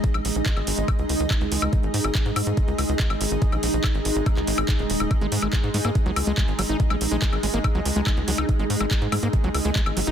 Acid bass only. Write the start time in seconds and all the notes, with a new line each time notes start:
5.21 G#3
5.42 G#3
5.53 G#3
5.74 G#3
5.85 A#3
6.06 F#3
6.27 G#3
6.38 G#3
6.59 F#3
6.69 D#4
6.90 G#3
7.11 G#3
7.22 G#3
7.43 G#3
7.54 A#3
7.75 F#3
7.96 G#3
8.07 G#3
8.28 F#3
8.38 D#4
8.59 G#3
8.81 G#3
8.91 G#3
9.12 G#3
9.23 A#3
9.44 F#3
9.65 G#3
9.76 G#3
9.97 F#3
10.07 D#4